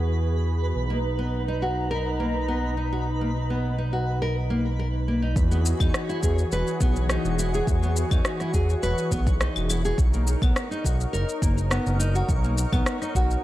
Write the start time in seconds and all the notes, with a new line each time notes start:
Already playing: E2 E3 B3 F#4 G#4 B4
0.75 B1 D#4 A#5
0.90 A#3
1.19 B3
1.48 D#4
1.62 F#4
1.91 A#4
2.20 A#3
2.48 B3
2.77 D#4
2.93 F#4
3.21 A#3
3.50 B3
3.78 D#4
3.93 F#4
4.22 A#4
4.50 A#3
4.79 A#4
5.08 A#3
5.22 D#4
5.36 E2 E3 F#4 G#4 C#5, kick, shaker
5.51 B3, shaker
5.66 shaker
5.80 E2 D#4, kick, claves, shaker
5.94 cross-stick, shaker
6.09 E4, shaker
6.23 E2 G#4, kick, shaker
6.38 shaker
6.52 E1 B4, shaker
6.67 shaker
6.81 B1 B3, kick, shaker
6.96 shaker
7.10 D#4, cross-stick, shaker
7.25 E1, shaker
7.39 E4, shaker
7.54 G#4, shaker
7.67 E2, kick, shaker
7.83 B3, shaker
7.96 shaker
8.11 E2 D#4, kick, claves, shaker
8.25 cross-stick, shaker
8.40 E4, cross-stick, shaker
8.54 E2 G#4, kick, shaker
8.69 shaker
8.83 E1 B4, shaker
8.98 shaker
9.12 B1 B3, kick, shaker
9.27 kick, shaker
9.40 D#4, cross-stick, shaker
9.56 E1, claves, shaker
9.70 E4, claves, shaker
9.85 G#4, shaker
9.98 B1 D#4 A#4, kick, shaker
10.14 A#3, shaker
10.27 shaker
10.42 B1 B3, kick, claves, shaker
10.56 cross-stick, shaker
10.71 D#4, shaker
10.85 B1 F#4, kick, shaker
11.01 shaker
11.13 F#1 A#4, shaker
11.29 shaker
11.42 F#1 A#3, kick, shaker
11.58 shaker
11.70 B3, cross-stick, shaker
11.86 F#1, shaker
12.00 D#4, shaker
12.15 F#4, shaker
12.29 B1, kick, shaker
12.44 A#3, shaker
12.58 shaker
12.73 B1 B3, kick, claves, shaker
12.86 cross-stick, shaker
13.02 D#4, cross-stick, shaker
13.15 B1 F#4, kick, shaker
13.31 shaker